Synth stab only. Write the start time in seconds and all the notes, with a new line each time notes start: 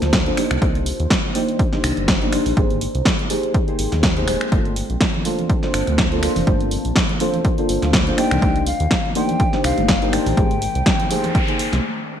Already playing: A#3 D4 F4 A4 C5
0.26 A#3 D4 F4 A4 C5
0.37 A#3 D4 D#4 G4 C5
0.61 A#3 D4 D#4 G4 C5
1.34 A#3 D4 D#4 G4 C5
1.72 A#3 D4 D#4 G4 C5
2.21 A#3 D4 D#4 G4 C5
2.32 A#3 D4 D#4 G4 C5
2.56 A#3 D#4 G4 G#4 C5
3.30 A#3 D#4 G4 G#4 C5
3.67 A#3 D#4 G4 G#4 C5
4.16 A#3 D#4 G4 G#4 C5
4.27 A#3 D#4 G4 G#4 C5
4.52 A#3 D4 F4 A4 C5
5.25 A#3 D4 F4 A4 C5
5.63 A#3 D4 F4 A4 C5
6.11 A#3 D4 F4 A4 C5
6.22 A#3 D4 F4 A4 C5
6.47 A#3 D4 F4 A4 C5
7.20 A#3 D4 F4 A4 C5
7.58 A#3 D4 F4 A4 C5
8.06 A#3 D4 F4 A4 C5
8.17 A#3 D4 D#4 G4 C5
8.42 A#3 D4 D#4 G4 C5
9.15 A#3 D4 D#4 G4 C5
9.53 A#3 D4 D#4 G4 C5
10.02 A#3 D4 D#4 G4 C5
10.13 A#3 D4 D#4 G4 C5
10.37 A#3 D#4 G4 G#4 C5
11.10 A#3 D#4 G4 G#4 C5
11.48 A#3 D#4 G4 G#4 C5